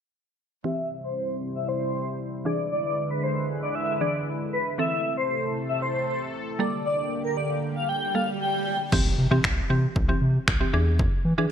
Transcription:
0.64 C3 E3 G3 C4 E4 G4 C5 E5
1.04 C5
1.17 C5
1.55 E5
1.68 C5
1.94 C5
2.45 D3 E3 G#3 D4 E4 G#4 B4 D5
2.72 D5
3.11 B4
3.23 C5
3.62 D5
3.75 E5
4.01 E3 D4 G#4 D5
4.53 B4
4.78 C3 E3 A3 C4 A4 E5
5.17 C5
5.30 C5
5.69 E5
5.82 C5
6.08 C5
6.59 D3 G3 A#3 G4 A4 D5
6.85 D5, swell
7.24 A#4
7.37 D5
7.76 F5
7.89 G5
8.15 G3 A#3 A4 F5
8.40 G5
8.92 C2 E3 C4 G4, kick, crash, impact
9.18 C3
9.31 C3 E3 C4 G4
9.44 C2, finger snap, kick
9.70 C3 E3 C4 G4
9.96 C2, kick
10.09 E3 C4 G4
10.22 C3
10.48 C2, finger snap, kick
10.60 E3 C4 G4
10.73 E2 E3 D4 G#4
10.99 kick
11.25 E3
11.38 E3 D4 G#4

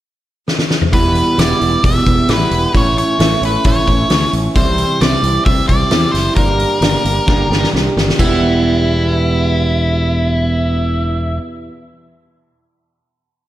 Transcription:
0.48 snare
0.59 snare
0.70 snare
0.82 mid tom
0.92 E1 E2 B2 E3 G3 B3 E4 B4, kick, open hi-hat
1.15 open hi-hat
1.37 E1 E3 G3 B3 E4 D5, snare, open hi-hat
1.60 E1 E3 G3 B3 E4, open hi-hat
1.81 E1 E2 B2 E3 G3 B3 E4, kick, open hi-hat
1.85 E5
2.05 E1 E3 G3 B3 E4, kick, open hi-hat
2.28 A1 E3 G3 B3 E4 B4, snare, open hi-hat
2.51 E1, open hi-hat
2.73 A1 A2 E3 A3 C#4 E4, kick, open hi-hat
2.77 C#5
2.98 C#5, open hi-hat
3.18 A1 E3 A3 C#4 E4, snare, open hi-hat
3.41 A1 A3 C#4 E4, open hi-hat
3.45 B4
3.64 A1 A2 E3 A3 C#4 E4 C#5, kick, open hi-hat
3.86 A1 A3 C#4 E4, kick, open hi-hat
4.09 D2 E3 A3 C#4 E4, snare, open hi-hat
4.33 A1, open hi-hat
4.54 C2 C3 E3 G3 C4 E4 C5, kick, open hi-hat
4.78 open hi-hat
5.01 C2 E3 G3 C4 E4 D5, snare, open hi-hat
5.22 C2 G3 C4 E4, open hi-hat
5.45 C2 C3 E3 G3 C4 E4 E5, kick, open hi-hat
5.68 C2 G3 C4 E4 D5, kick, open hi-hat
5.90 E2 E3 G3 C4 E4, snare, open hi-hat
6.12 F#1 C5, snare, open hi-hat
6.35 G1 G2 D3 G3 A#3 D4 G4 A#4, kick, open hi-hat
6.60 open hi-hat
6.81 G1 G3 A#3 D4 G4, snare, open hi-hat
7.03 G1 G3 A#3 D4 G4, open hi-hat
7.26 G1 G2 D3 G3 A#3 D4 G4, kick, snare
7.49 G1 G3 A#3 D4 G4, snare
7.63 snare
7.71 C2 G3 A#3 D4 G4
7.75 snare
7.96 G1, snare
8.09 snare
8.17 E1 E2 B2 E3 G3 B3 E4, kick, crash

